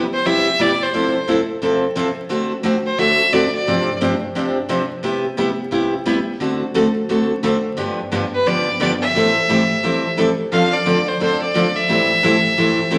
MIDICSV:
0, 0, Header, 1, 3, 480
1, 0, Start_track
1, 0, Tempo, 342075
1, 1316, Time_signature, 4, 2, 24, 8
1, 18218, End_track
2, 0, Start_track
2, 0, Title_t, "Fiddle"
2, 0, Program_c, 0, 110
2, 187, Note_on_c, 0, 72, 89
2, 369, Note_on_c, 0, 76, 101
2, 390, Note_off_c, 0, 72, 0
2, 862, Note_on_c, 0, 74, 98
2, 883, Note_off_c, 0, 76, 0
2, 1164, Note_on_c, 0, 72, 82
2, 1185, Note_off_c, 0, 74, 0
2, 1808, Note_off_c, 0, 72, 0
2, 4018, Note_on_c, 0, 72, 89
2, 4192, Note_on_c, 0, 76, 103
2, 4214, Note_off_c, 0, 72, 0
2, 4673, Note_on_c, 0, 74, 91
2, 4694, Note_off_c, 0, 76, 0
2, 4970, Note_off_c, 0, 74, 0
2, 4976, Note_on_c, 0, 74, 81
2, 5585, Note_off_c, 0, 74, 0
2, 11706, Note_on_c, 0, 71, 83
2, 11886, Note_on_c, 0, 74, 91
2, 11907, Note_off_c, 0, 71, 0
2, 12359, Note_off_c, 0, 74, 0
2, 12369, Note_on_c, 0, 74, 95
2, 12500, Note_off_c, 0, 74, 0
2, 12657, Note_on_c, 0, 76, 95
2, 14220, Note_off_c, 0, 76, 0
2, 14762, Note_on_c, 0, 77, 96
2, 15063, Note_on_c, 0, 74, 84
2, 15084, Note_off_c, 0, 77, 0
2, 15548, Note_on_c, 0, 72, 75
2, 15569, Note_off_c, 0, 74, 0
2, 15721, Note_off_c, 0, 72, 0
2, 15732, Note_on_c, 0, 72, 81
2, 16003, Note_off_c, 0, 72, 0
2, 16019, Note_on_c, 0, 74, 88
2, 16501, Note_on_c, 0, 76, 96
2, 16522, Note_off_c, 0, 74, 0
2, 18218, Note_off_c, 0, 76, 0
2, 18218, End_track
3, 0, Start_track
3, 0, Title_t, "Steel-string acoustic guitar"
3, 0, Program_c, 1, 25
3, 353, Note_on_c, 1, 48, 50
3, 361, Note_on_c, 1, 55, 54
3, 361, Note_on_c, 1, 59, 56
3, 368, Note_on_c, 1, 64, 66
3, 372, Note_on_c, 1, 67, 57
3, 654, Note_off_c, 1, 48, 0
3, 658, Note_off_c, 1, 55, 0
3, 658, Note_off_c, 1, 59, 0
3, 662, Note_off_c, 1, 64, 0
3, 663, Note_off_c, 1, 67, 0
3, 828, Note_on_c, 1, 48, 63
3, 834, Note_on_c, 1, 55, 64
3, 841, Note_on_c, 1, 59, 69
3, 846, Note_on_c, 1, 64, 68
3, 848, Note_on_c, 1, 67, 73
3, 991, Note_off_c, 1, 48, 0
3, 993, Note_off_c, 1, 55, 0
3, 997, Note_off_c, 1, 59, 0
3, 1000, Note_off_c, 1, 64, 0
3, 1000, Note_off_c, 1, 67, 0
3, 1311, Note_on_c, 1, 48, 53
3, 1318, Note_on_c, 1, 53, 59
3, 1323, Note_on_c, 1, 60, 56
3, 1330, Note_on_c, 1, 64, 59
3, 1330, Note_on_c, 1, 69, 63
3, 1612, Note_off_c, 1, 48, 0
3, 1615, Note_off_c, 1, 53, 0
3, 1618, Note_off_c, 1, 60, 0
3, 1621, Note_off_c, 1, 64, 0
3, 1621, Note_off_c, 1, 69, 0
3, 1790, Note_on_c, 1, 48, 63
3, 1796, Note_on_c, 1, 53, 63
3, 1803, Note_on_c, 1, 60, 64
3, 1808, Note_on_c, 1, 64, 70
3, 1810, Note_on_c, 1, 69, 73
3, 1950, Note_off_c, 1, 48, 0
3, 1953, Note_off_c, 1, 53, 0
3, 1957, Note_off_c, 1, 60, 0
3, 1959, Note_off_c, 1, 64, 0
3, 1960, Note_off_c, 1, 69, 0
3, 2269, Note_on_c, 1, 48, 53
3, 2275, Note_on_c, 1, 53, 56
3, 2283, Note_on_c, 1, 60, 58
3, 2286, Note_on_c, 1, 64, 61
3, 2289, Note_on_c, 1, 69, 58
3, 2569, Note_off_c, 1, 48, 0
3, 2573, Note_off_c, 1, 53, 0
3, 2576, Note_off_c, 1, 60, 0
3, 2578, Note_off_c, 1, 64, 0
3, 2579, Note_off_c, 1, 69, 0
3, 2742, Note_on_c, 1, 48, 63
3, 2747, Note_on_c, 1, 53, 75
3, 2756, Note_on_c, 1, 60, 71
3, 2759, Note_on_c, 1, 64, 76
3, 2766, Note_on_c, 1, 69, 77
3, 2905, Note_off_c, 1, 48, 0
3, 2907, Note_off_c, 1, 53, 0
3, 2912, Note_off_c, 1, 60, 0
3, 2914, Note_off_c, 1, 64, 0
3, 2917, Note_off_c, 1, 69, 0
3, 3216, Note_on_c, 1, 50, 53
3, 3222, Note_on_c, 1, 57, 50
3, 3225, Note_on_c, 1, 60, 59
3, 3230, Note_on_c, 1, 66, 60
3, 3236, Note_on_c, 1, 69, 67
3, 3522, Note_off_c, 1, 50, 0
3, 3525, Note_off_c, 1, 57, 0
3, 3527, Note_off_c, 1, 60, 0
3, 3529, Note_off_c, 1, 66, 0
3, 3532, Note_off_c, 1, 69, 0
3, 3694, Note_on_c, 1, 50, 68
3, 3699, Note_on_c, 1, 57, 70
3, 3700, Note_on_c, 1, 60, 70
3, 3710, Note_on_c, 1, 66, 70
3, 3714, Note_on_c, 1, 69, 72
3, 3860, Note_off_c, 1, 50, 0
3, 3862, Note_off_c, 1, 57, 0
3, 3863, Note_off_c, 1, 60, 0
3, 3868, Note_off_c, 1, 66, 0
3, 3870, Note_off_c, 1, 69, 0
3, 4185, Note_on_c, 1, 50, 57
3, 4188, Note_on_c, 1, 57, 54
3, 4193, Note_on_c, 1, 60, 58
3, 4196, Note_on_c, 1, 66, 58
3, 4203, Note_on_c, 1, 69, 68
3, 4485, Note_off_c, 1, 50, 0
3, 4487, Note_off_c, 1, 57, 0
3, 4490, Note_off_c, 1, 60, 0
3, 4491, Note_off_c, 1, 66, 0
3, 4495, Note_off_c, 1, 69, 0
3, 4664, Note_on_c, 1, 50, 73
3, 4669, Note_on_c, 1, 57, 72
3, 4670, Note_on_c, 1, 60, 73
3, 4679, Note_on_c, 1, 66, 76
3, 4680, Note_on_c, 1, 69, 70
3, 4824, Note_off_c, 1, 50, 0
3, 4827, Note_off_c, 1, 57, 0
3, 4827, Note_off_c, 1, 60, 0
3, 4832, Note_off_c, 1, 66, 0
3, 4832, Note_off_c, 1, 69, 0
3, 5148, Note_on_c, 1, 43, 51
3, 5152, Note_on_c, 1, 48, 53
3, 5157, Note_on_c, 1, 53, 55
3, 5164, Note_on_c, 1, 60, 58
3, 5166, Note_on_c, 1, 62, 60
3, 5167, Note_on_c, 1, 67, 54
3, 5447, Note_off_c, 1, 43, 0
3, 5449, Note_off_c, 1, 48, 0
3, 5451, Note_off_c, 1, 53, 0
3, 5455, Note_off_c, 1, 60, 0
3, 5456, Note_off_c, 1, 62, 0
3, 5456, Note_off_c, 1, 67, 0
3, 5622, Note_on_c, 1, 43, 67
3, 5629, Note_on_c, 1, 48, 72
3, 5632, Note_on_c, 1, 53, 71
3, 5632, Note_on_c, 1, 60, 69
3, 5638, Note_on_c, 1, 62, 73
3, 5638, Note_on_c, 1, 67, 78
3, 5783, Note_off_c, 1, 43, 0
3, 5786, Note_off_c, 1, 48, 0
3, 5788, Note_off_c, 1, 53, 0
3, 5788, Note_off_c, 1, 60, 0
3, 5791, Note_off_c, 1, 62, 0
3, 5791, Note_off_c, 1, 67, 0
3, 6106, Note_on_c, 1, 43, 53
3, 6109, Note_on_c, 1, 48, 53
3, 6115, Note_on_c, 1, 53, 57
3, 6121, Note_on_c, 1, 60, 58
3, 6123, Note_on_c, 1, 62, 55
3, 6126, Note_on_c, 1, 67, 62
3, 6406, Note_off_c, 1, 43, 0
3, 6407, Note_off_c, 1, 48, 0
3, 6410, Note_off_c, 1, 53, 0
3, 6413, Note_off_c, 1, 60, 0
3, 6414, Note_off_c, 1, 62, 0
3, 6416, Note_off_c, 1, 67, 0
3, 6577, Note_on_c, 1, 43, 59
3, 6582, Note_on_c, 1, 48, 72
3, 6587, Note_on_c, 1, 53, 77
3, 6589, Note_on_c, 1, 60, 68
3, 6592, Note_on_c, 1, 62, 72
3, 6594, Note_on_c, 1, 67, 75
3, 6740, Note_off_c, 1, 43, 0
3, 6743, Note_off_c, 1, 48, 0
3, 6745, Note_off_c, 1, 53, 0
3, 6746, Note_off_c, 1, 60, 0
3, 6747, Note_off_c, 1, 62, 0
3, 6749, Note_off_c, 1, 67, 0
3, 7056, Note_on_c, 1, 48, 55
3, 7066, Note_on_c, 1, 55, 59
3, 7068, Note_on_c, 1, 59, 56
3, 7072, Note_on_c, 1, 64, 57
3, 7074, Note_on_c, 1, 67, 62
3, 7360, Note_off_c, 1, 48, 0
3, 7366, Note_off_c, 1, 55, 0
3, 7367, Note_off_c, 1, 59, 0
3, 7368, Note_off_c, 1, 64, 0
3, 7370, Note_off_c, 1, 67, 0
3, 7537, Note_on_c, 1, 48, 60
3, 7544, Note_on_c, 1, 55, 72
3, 7549, Note_on_c, 1, 59, 67
3, 7554, Note_on_c, 1, 64, 73
3, 7554, Note_on_c, 1, 67, 67
3, 7701, Note_off_c, 1, 48, 0
3, 7704, Note_off_c, 1, 55, 0
3, 7706, Note_off_c, 1, 59, 0
3, 7709, Note_off_c, 1, 64, 0
3, 7709, Note_off_c, 1, 67, 0
3, 8012, Note_on_c, 1, 48, 57
3, 8020, Note_on_c, 1, 55, 61
3, 8027, Note_on_c, 1, 59, 58
3, 8028, Note_on_c, 1, 64, 66
3, 8032, Note_on_c, 1, 67, 61
3, 8319, Note_off_c, 1, 48, 0
3, 8323, Note_off_c, 1, 55, 0
3, 8326, Note_off_c, 1, 59, 0
3, 8327, Note_off_c, 1, 64, 0
3, 8329, Note_off_c, 1, 67, 0
3, 8497, Note_on_c, 1, 48, 65
3, 8500, Note_on_c, 1, 55, 69
3, 8505, Note_on_c, 1, 59, 74
3, 8511, Note_on_c, 1, 64, 69
3, 8517, Note_on_c, 1, 67, 73
3, 8661, Note_off_c, 1, 48, 0
3, 8662, Note_off_c, 1, 55, 0
3, 8665, Note_off_c, 1, 59, 0
3, 8668, Note_off_c, 1, 64, 0
3, 8671, Note_off_c, 1, 67, 0
3, 8982, Note_on_c, 1, 50, 61
3, 8991, Note_on_c, 1, 57, 55
3, 8993, Note_on_c, 1, 60, 54
3, 8998, Note_on_c, 1, 66, 59
3, 9007, Note_on_c, 1, 69, 64
3, 9284, Note_off_c, 1, 50, 0
3, 9289, Note_off_c, 1, 57, 0
3, 9290, Note_off_c, 1, 60, 0
3, 9292, Note_off_c, 1, 66, 0
3, 9297, Note_off_c, 1, 69, 0
3, 9463, Note_on_c, 1, 50, 65
3, 9472, Note_on_c, 1, 57, 78
3, 9472, Note_on_c, 1, 60, 74
3, 9478, Note_on_c, 1, 66, 72
3, 9479, Note_on_c, 1, 69, 74
3, 9624, Note_off_c, 1, 50, 0
3, 9629, Note_off_c, 1, 57, 0
3, 9629, Note_off_c, 1, 60, 0
3, 9632, Note_off_c, 1, 66, 0
3, 9632, Note_off_c, 1, 69, 0
3, 9950, Note_on_c, 1, 50, 57
3, 9953, Note_on_c, 1, 57, 61
3, 9960, Note_on_c, 1, 60, 58
3, 9962, Note_on_c, 1, 66, 61
3, 9967, Note_on_c, 1, 69, 60
3, 10249, Note_off_c, 1, 50, 0
3, 10251, Note_off_c, 1, 57, 0
3, 10254, Note_off_c, 1, 60, 0
3, 10255, Note_off_c, 1, 66, 0
3, 10257, Note_off_c, 1, 69, 0
3, 10424, Note_on_c, 1, 50, 71
3, 10428, Note_on_c, 1, 57, 68
3, 10436, Note_on_c, 1, 60, 70
3, 10439, Note_on_c, 1, 66, 75
3, 10442, Note_on_c, 1, 69, 80
3, 10585, Note_off_c, 1, 50, 0
3, 10587, Note_off_c, 1, 57, 0
3, 10591, Note_off_c, 1, 60, 0
3, 10593, Note_off_c, 1, 66, 0
3, 10594, Note_off_c, 1, 69, 0
3, 10898, Note_on_c, 1, 43, 59
3, 10905, Note_on_c, 1, 50, 57
3, 10909, Note_on_c, 1, 59, 57
3, 10911, Note_on_c, 1, 53, 62
3, 10916, Note_on_c, 1, 62, 56
3, 10918, Note_on_c, 1, 67, 66
3, 11204, Note_off_c, 1, 43, 0
3, 11207, Note_off_c, 1, 50, 0
3, 11209, Note_off_c, 1, 59, 0
3, 11210, Note_off_c, 1, 53, 0
3, 11213, Note_off_c, 1, 62, 0
3, 11213, Note_off_c, 1, 67, 0
3, 11389, Note_on_c, 1, 43, 73
3, 11396, Note_on_c, 1, 50, 67
3, 11397, Note_on_c, 1, 59, 74
3, 11398, Note_on_c, 1, 53, 71
3, 11403, Note_on_c, 1, 62, 74
3, 11406, Note_on_c, 1, 67, 73
3, 11548, Note_off_c, 1, 43, 0
3, 11552, Note_off_c, 1, 50, 0
3, 11552, Note_off_c, 1, 59, 0
3, 11553, Note_off_c, 1, 53, 0
3, 11555, Note_off_c, 1, 62, 0
3, 11557, Note_off_c, 1, 67, 0
3, 11873, Note_on_c, 1, 43, 54
3, 11875, Note_on_c, 1, 50, 53
3, 11879, Note_on_c, 1, 53, 56
3, 11882, Note_on_c, 1, 59, 61
3, 11886, Note_on_c, 1, 62, 61
3, 11892, Note_on_c, 1, 67, 54
3, 12171, Note_off_c, 1, 43, 0
3, 12172, Note_off_c, 1, 50, 0
3, 12174, Note_off_c, 1, 53, 0
3, 12176, Note_off_c, 1, 59, 0
3, 12178, Note_off_c, 1, 62, 0
3, 12181, Note_off_c, 1, 67, 0
3, 12343, Note_on_c, 1, 43, 62
3, 12347, Note_on_c, 1, 50, 73
3, 12354, Note_on_c, 1, 53, 66
3, 12357, Note_on_c, 1, 59, 79
3, 12361, Note_on_c, 1, 67, 70
3, 12363, Note_on_c, 1, 62, 74
3, 12506, Note_off_c, 1, 43, 0
3, 12508, Note_off_c, 1, 50, 0
3, 12511, Note_off_c, 1, 53, 0
3, 12513, Note_off_c, 1, 59, 0
3, 12514, Note_off_c, 1, 67, 0
3, 12516, Note_off_c, 1, 62, 0
3, 12837, Note_on_c, 1, 45, 56
3, 12841, Note_on_c, 1, 52, 56
3, 12845, Note_on_c, 1, 55, 55
3, 12850, Note_on_c, 1, 60, 55
3, 12856, Note_on_c, 1, 64, 59
3, 12857, Note_on_c, 1, 69, 65
3, 13134, Note_off_c, 1, 45, 0
3, 13136, Note_off_c, 1, 52, 0
3, 13138, Note_off_c, 1, 55, 0
3, 13141, Note_off_c, 1, 60, 0
3, 13143, Note_off_c, 1, 64, 0
3, 13144, Note_off_c, 1, 69, 0
3, 13315, Note_on_c, 1, 45, 63
3, 13320, Note_on_c, 1, 52, 65
3, 13325, Note_on_c, 1, 55, 73
3, 13328, Note_on_c, 1, 64, 74
3, 13329, Note_on_c, 1, 60, 70
3, 13334, Note_on_c, 1, 69, 72
3, 13472, Note_off_c, 1, 45, 0
3, 13475, Note_off_c, 1, 52, 0
3, 13477, Note_off_c, 1, 55, 0
3, 13479, Note_off_c, 1, 60, 0
3, 13479, Note_off_c, 1, 64, 0
3, 13482, Note_off_c, 1, 69, 0
3, 13794, Note_on_c, 1, 45, 56
3, 13799, Note_on_c, 1, 52, 51
3, 13805, Note_on_c, 1, 55, 52
3, 13806, Note_on_c, 1, 60, 59
3, 13810, Note_on_c, 1, 64, 60
3, 13814, Note_on_c, 1, 69, 61
3, 14093, Note_off_c, 1, 45, 0
3, 14095, Note_off_c, 1, 52, 0
3, 14098, Note_off_c, 1, 55, 0
3, 14099, Note_off_c, 1, 60, 0
3, 14101, Note_off_c, 1, 64, 0
3, 14103, Note_off_c, 1, 69, 0
3, 14273, Note_on_c, 1, 45, 62
3, 14279, Note_on_c, 1, 52, 69
3, 14284, Note_on_c, 1, 55, 66
3, 14287, Note_on_c, 1, 60, 78
3, 14292, Note_on_c, 1, 64, 75
3, 14293, Note_on_c, 1, 69, 79
3, 14432, Note_off_c, 1, 45, 0
3, 14434, Note_off_c, 1, 52, 0
3, 14437, Note_off_c, 1, 55, 0
3, 14439, Note_off_c, 1, 60, 0
3, 14441, Note_off_c, 1, 64, 0
3, 14442, Note_off_c, 1, 69, 0
3, 14758, Note_on_c, 1, 50, 51
3, 14763, Note_on_c, 1, 53, 59
3, 14772, Note_on_c, 1, 60, 60
3, 14774, Note_on_c, 1, 62, 59
3, 14777, Note_on_c, 1, 69, 58
3, 15055, Note_off_c, 1, 50, 0
3, 15058, Note_off_c, 1, 53, 0
3, 15062, Note_off_c, 1, 60, 0
3, 15063, Note_off_c, 1, 62, 0
3, 15065, Note_off_c, 1, 69, 0
3, 15233, Note_on_c, 1, 50, 68
3, 15236, Note_on_c, 1, 53, 75
3, 15240, Note_on_c, 1, 60, 69
3, 15246, Note_on_c, 1, 62, 70
3, 15250, Note_on_c, 1, 69, 78
3, 15392, Note_off_c, 1, 50, 0
3, 15394, Note_off_c, 1, 53, 0
3, 15396, Note_off_c, 1, 60, 0
3, 15399, Note_off_c, 1, 62, 0
3, 15401, Note_off_c, 1, 69, 0
3, 15717, Note_on_c, 1, 50, 51
3, 15724, Note_on_c, 1, 53, 56
3, 15731, Note_on_c, 1, 60, 54
3, 15734, Note_on_c, 1, 62, 63
3, 15735, Note_on_c, 1, 69, 59
3, 16015, Note_off_c, 1, 50, 0
3, 16019, Note_off_c, 1, 53, 0
3, 16022, Note_off_c, 1, 60, 0
3, 16024, Note_off_c, 1, 62, 0
3, 16024, Note_off_c, 1, 69, 0
3, 16197, Note_on_c, 1, 50, 70
3, 16204, Note_on_c, 1, 53, 70
3, 16212, Note_on_c, 1, 60, 69
3, 16212, Note_on_c, 1, 62, 77
3, 16220, Note_on_c, 1, 69, 69
3, 16354, Note_off_c, 1, 50, 0
3, 16358, Note_off_c, 1, 53, 0
3, 16362, Note_off_c, 1, 60, 0
3, 16362, Note_off_c, 1, 62, 0
3, 16366, Note_off_c, 1, 69, 0
3, 16675, Note_on_c, 1, 45, 50
3, 16685, Note_on_c, 1, 52, 55
3, 16686, Note_on_c, 1, 55, 54
3, 16690, Note_on_c, 1, 60, 59
3, 16695, Note_on_c, 1, 64, 64
3, 16700, Note_on_c, 1, 69, 61
3, 16975, Note_off_c, 1, 45, 0
3, 16980, Note_off_c, 1, 52, 0
3, 16980, Note_off_c, 1, 55, 0
3, 16982, Note_off_c, 1, 60, 0
3, 16985, Note_off_c, 1, 64, 0
3, 16987, Note_off_c, 1, 69, 0
3, 17161, Note_on_c, 1, 45, 74
3, 17166, Note_on_c, 1, 52, 72
3, 17169, Note_on_c, 1, 55, 70
3, 17174, Note_on_c, 1, 60, 67
3, 17176, Note_on_c, 1, 64, 79
3, 17179, Note_on_c, 1, 69, 78
3, 17317, Note_off_c, 1, 45, 0
3, 17320, Note_off_c, 1, 52, 0
3, 17321, Note_off_c, 1, 55, 0
3, 17324, Note_off_c, 1, 60, 0
3, 17324, Note_off_c, 1, 64, 0
3, 17326, Note_off_c, 1, 69, 0
3, 17642, Note_on_c, 1, 45, 51
3, 17646, Note_on_c, 1, 52, 53
3, 17649, Note_on_c, 1, 55, 57
3, 17655, Note_on_c, 1, 60, 64
3, 17658, Note_on_c, 1, 64, 61
3, 17659, Note_on_c, 1, 69, 60
3, 17939, Note_off_c, 1, 45, 0
3, 17941, Note_off_c, 1, 52, 0
3, 17942, Note_off_c, 1, 55, 0
3, 17945, Note_off_c, 1, 60, 0
3, 17947, Note_off_c, 1, 64, 0
3, 17947, Note_off_c, 1, 69, 0
3, 18109, Note_on_c, 1, 45, 69
3, 18113, Note_on_c, 1, 52, 66
3, 18119, Note_on_c, 1, 55, 69
3, 18121, Note_on_c, 1, 60, 77
3, 18127, Note_on_c, 1, 64, 66
3, 18129, Note_on_c, 1, 69, 78
3, 18218, Note_off_c, 1, 45, 0
3, 18218, Note_off_c, 1, 52, 0
3, 18218, Note_off_c, 1, 55, 0
3, 18218, Note_off_c, 1, 60, 0
3, 18218, Note_off_c, 1, 64, 0
3, 18218, Note_off_c, 1, 69, 0
3, 18218, End_track
0, 0, End_of_file